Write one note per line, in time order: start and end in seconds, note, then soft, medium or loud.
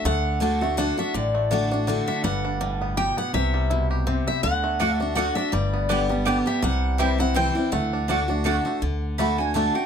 0.04 0.90 D2 medium
0.04 0.39 D3 loud
0.04 0.58 A3 medium
0.04 0.74 F#5 loud
0.40 0.60 D3 medium
0.40 0.61 A3 medium
0.40 0.61 D4 loud
0.40 0.78 D4 medium
0.40 0.60 F#4 medium
0.61 1.11 A3 medium
0.61 0.78 D4 medium
0.61 0.77 F#4 medium
0.77 0.97 D3 medium
0.77 0.97 A3 medium
0.77 0.98 D4 medium
0.77 0.98 D4 loud
0.77 0.96 F#4 loud
0.77 0.98 F#5 loud
0.97 1.48 D4 medium
0.97 1.15 D4 soft
0.97 1.13 F#4 medium
0.97 1.14 E5 medium
1.14 1.99 A1 medium
1.14 1.85 A2 medium
1.14 1.67 D3 medium
1.14 1.67 D5 medium
1.35 1.84 A3 medium
1.51 1.70 D3 medium
1.51 1.71 A3 medium
1.51 1.70 D4 medium
1.51 1.71 D4 loud
1.51 1.70 F#4 medium
1.71 1.87 D4 medium
1.71 1.88 D4 medium
1.71 1.87 F#4 medium
1.87 2.22 D3 loud
1.87 2.23 A3 medium
1.87 2.07 D4 medium
1.87 2.23 D4 loud
1.87 2.23 F#4 loud
2.08 2.24 D4 medium
2.08 2.23 E5 medium
2.24 3.09 G1 loud
2.24 2.94 G2 loud
2.24 2.60 G3 medium
2.24 2.97 F#5 loud
2.45 2.94 D4 medium
2.61 2.96 A2 medium
2.61 3.14 G3 medium
2.81 3.16 B3 medium
2.97 3.32 B2 medium
2.97 3.34 G4 medium
2.97 3.16 G5 loud
3.17 3.34 B3 medium
3.17 3.34 F#5 loud
3.33 4.19 C2 medium
3.33 4.04 C3 loud
3.33 3.87 E3 medium
3.33 3.87 E5 loud
3.54 4.04 G3 medium
3.70 4.05 B2 medium
3.70 4.23 E4 medium
3.91 4.40 G4 medium
4.07 4.42 C3 medium
4.07 4.43 C4 medium
4.27 4.43 E4 medium
4.27 4.42 E5 loud
4.43 5.29 D2 medium
4.43 4.78 D3 medium
4.43 4.96 D3 medium
4.43 4.94 F#5 loud
4.64 5.13 A3 medium
4.79 4.99 D3 medium
4.79 4.90 A3 medium
4.79 5.00 A3 medium
4.79 4.99 D4 medium
4.79 5.00 D4 medium
4.79 4.90 F#4 loud
4.79 4.99 F#4 medium
4.79 4.90 D5 loud
4.79 4.90 F#5 loud
4.94 5.12 E5 loud
5.00 5.16 D4 medium
5.00 5.17 D4 medium
5.00 5.16 F#4 medium
5.15 5.36 D3 medium
5.15 5.26 A3 medium
5.15 5.36 A3 medium
5.15 5.35 D4 medium
5.15 5.37 D4 medium
5.15 5.26 F#4 loud
5.15 5.35 F#4 loud
5.15 5.26 D5 medium
5.15 5.35 F#5 loud
5.15 5.27 F#5 loud
5.35 5.53 D4 medium
5.35 5.52 F#4 medium
5.35 5.51 E5 loud
5.52 6.38 G1 medium
5.52 6.23 G2 loud
5.52 6.06 G3 medium
5.52 6.05 D5 medium
5.74 6.23 B3 medium
5.89 6.09 D3 medium
5.89 6.09 G3 medium
5.89 5.99 B3 medium
5.89 6.10 B3 medium
5.89 6.25 D4 medium
5.89 5.99 G4 loud
5.89 6.08 G4 loud
5.89 6.00 D5 loud
5.89 6.00 G5 loud
6.09 6.60 G3 medium
6.09 6.26 B3 medium
6.09 6.25 G4 medium
6.25 6.45 D3 loud
6.25 6.46 G3 medium
6.25 6.36 B3 loud
6.25 6.46 B3 loud
6.25 6.63 D4 medium
6.25 6.36 G4 loud
6.25 6.44 G4 loud
6.25 6.36 D5 medium
6.25 6.36 G5 loud
6.46 6.63 B3 medium
6.46 6.62 G4 medium
6.46 6.63 G4 medium
6.46 6.63 E5 medium
6.62 7.48 C2 medium
6.62 7.32 C3 loud
6.62 7.15 G3 medium
6.62 6.99 F#5 loud
6.98 7.18 E3 medium
6.98 7.19 G3 medium
6.98 7.09 C4 medium
6.98 7.19 C4 medium
6.98 7.09 E4 medium
6.98 7.17 E4 loud
6.98 7.52 G4 medium
6.98 7.09 C5 medium
6.98 7.20 E5 loud
6.98 7.09 G5 loud
7.18 7.35 C4 medium
7.18 7.35 E4 medium
7.18 7.69 E4 medium
7.18 7.36 F#5 loud
7.34 7.55 E3 medium
7.34 7.55 G3 loud
7.34 7.45 C4 loud
7.34 7.55 C4 loud
7.34 7.73 C4 medium
7.34 7.46 E4 medium
7.34 7.54 E4 loud
7.34 7.46 C5 loud
7.34 7.70 G5 loud
7.34 7.46 G5 loud
7.55 7.72 G3 medium
7.55 7.72 C4 medium
7.55 7.71 E4 medium
7.72 8.58 D2 medium
7.72 8.07 D3 loud
7.72 8.25 A3 medium
7.72 8.62 F#5 loud
7.93 8.08 D4 medium
8.08 8.28 D3 medium
8.08 8.18 A3 medium
8.08 8.29 A3 medium
8.08 8.28 D4 medium
8.08 8.29 D4 medium
8.08 8.19 F#4 medium
8.08 8.27 F#4 medium
8.08 8.19 D5 loud
8.08 8.19 F#5 loud
8.28 8.45 D4 medium
8.28 8.44 F#4 medium
8.44 8.64 D3 medium
8.44 8.65 A3 medium
8.44 8.55 A3 medium
8.44 8.65 D4 loud
8.44 8.82 D4 medium
8.44 8.55 F#4 medium
8.44 8.64 F#4 loud
8.44 8.56 D5 medium
8.44 8.56 F#5 medium
8.65 8.82 A3 medium
8.65 8.82 D4 medium
8.65 8.81 F#4 medium
8.82 9.67 D2 medium
8.82 9.17 D3 medium
9.18 9.38 D3 medium
9.18 9.38 A3 medium
9.18 9.28 A3 medium
9.18 9.39 D4 medium
9.18 9.22 D4 medium
9.18 9.37 F#4 medium
9.18 9.38 B5 medium
9.38 9.55 D4 medium
9.38 9.54 F#4 medium
9.38 9.54 G#5 medium
9.54 9.74 D3 medium
9.54 9.75 A3 medium
9.54 9.65 A3 medium
9.54 9.75 D4 loud
9.54 9.58 D4 medium
9.54 9.74 F#4 loud
9.54 9.74 A5 medium
9.75 9.86 D4 medium
9.75 9.86 F#4 medium
9.75 9.86 G5 medium